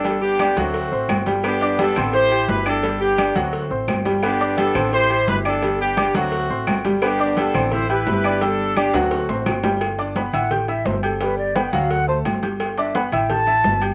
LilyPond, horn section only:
\new Staff \with { instrumentName = "Horn section" } { \time 4/4 \key g \major \tempo 4 = 172 << { a'8 g'4 fis'2 r8 | g'4 a'4 c''4 b'8 a'8~ | a'8 g'4 fis'4 r4. | g'4 a'4 c''4 b'8 a'8~ |
a'8 g'4 fis'2 r8 | g'4 a'4 c''8 b'4. | a'4 g'8 fis'2 r8 | r1 |
r1 | r1 | } \\ { d'8 <b d'>4 <a c'>2 r8 | <b d'>4 d'4 <e' g'>4. d'8~ | d'8 <b d'>4 <a c'>2 r8 | <b d'>4 d'4 <e' g'>4. d'8~ |
d'8 <b d'>4 <a c'>2 r8 | <b d'>4 d'4 <e' g'>8 <e' g'>4. | d'4. <a c'>2 r8 | r1 |
r1 | r1 | } >> }